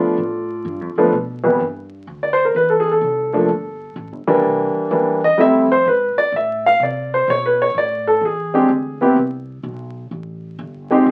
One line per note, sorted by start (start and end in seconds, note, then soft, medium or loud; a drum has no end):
0.00 0.16 F3 medium
0.00 0.16 A3 medium
0.00 0.16 B3 medium
0.00 0.16 D4 medium
0.00 0.94 F4 medium
0.00 0.94 A4 medium
0.00 0.93 D5 medium
0.00 muted upright bass stroke soft
0.17 0.64 A2 medium
0.65 0.81 G2 medium
0.81 0.95 F2 medium
0.96 1.11 D2 medium
0.96 1.12 F3 medium
0.96 1.12 A3 medium
0.96 1.12 B3 medium
0.96 1.12 D4 medium
1.12 1.59 B2 medium
1.44 1.59 C2 medium
1.44 1.59 E3 medium
1.44 1.59 G3 soft
1.44 1.59 B3 medium
1.44 1.59 E4 medium
1.60 2.06 G2 medium
2.07 2.53 D2 medium
2.23 2.38 D5 medium
2.33 2.44 C5 medium
2.45 2.54 A#4 medium
2.55 3.01 E2 medium
2.55 2.71 B4 medium
2.70 2.85 A4 medium
2.80 2.91 G#4 medium
2.91 4.07 A4 medium
3.01 3.48 C2 medium
3.33 3.48 F3 medium
3.33 3.48 A3 medium
3.33 3.48 A#3 medium
3.33 3.48 D4 medium
3.48 3.95 G1 medium
3.96 4.12 A1 medium
4.12 4.27 G1 medium
4.27 4.43 F1 medium
4.27 4.88 E3 medium
4.27 4.88 G3 medium
4.27 4.88 A#3 medium
4.27 4.88 D4 medium
4.43 4.73 C2 medium
4.75 muted upright bass stroke soft
4.91 5.37 E2 medium
4.91 5.19 E3 medium
4.91 5.20 G3 medium
4.91 5.20 A#3 medium
4.91 5.20 D4 medium
5.24 5.39 D#5 medium
5.38 5.84 F2 medium
5.38 5.66 G3 medium
5.38 5.67 A3 medium
5.38 5.67 C4 medium
5.38 5.67 E4 medium
5.38 5.70 E5 medium
5.72 5.86 C5 medium
5.85 6.15 G#2 medium
5.85 6.17 B4 medium
6.16 6.33 D5 medium
6.16 muted upright bass stroke soft
6.32 6.79 A2 medium
6.36 6.65 E5 medium
6.66 6.81 F5 medium
6.80 7.26 C3 medium
6.80 7.12 D5 medium
7.14 7.29 C5 medium
7.28 7.74 B2 medium
7.28 7.44 C#5 medium
7.46 7.60 B4 medium
7.62 7.76 C#5 medium
7.74 8.21 A2 medium
7.74 8.07 D5 medium
8.07 8.23 A4 medium
8.21 8.68 E2 medium
8.25 9.15 G#4 medium
8.54 8.68 G#3 medium
8.54 8.68 C4 medium
8.54 8.69 D4 medium
8.54 8.69 G4 medium
8.68 9.15 D2 medium
9.01 9.16 B3 medium
9.01 9.16 C4 medium
9.01 9.16 E4 medium
9.01 9.16 G4 medium
9.16 9.63 C2 medium
9.63 10.10 B1 medium
10.11 10.58 A1 medium
10.59 11.05 G1 medium
10.90 11.05 G#3 medium
10.90 11.05 C4 medium
10.90 11.05 D#4 medium
10.90 11.03 G4 medium
11.05 11.11 F1 medium
11.05 11.08 G4 medium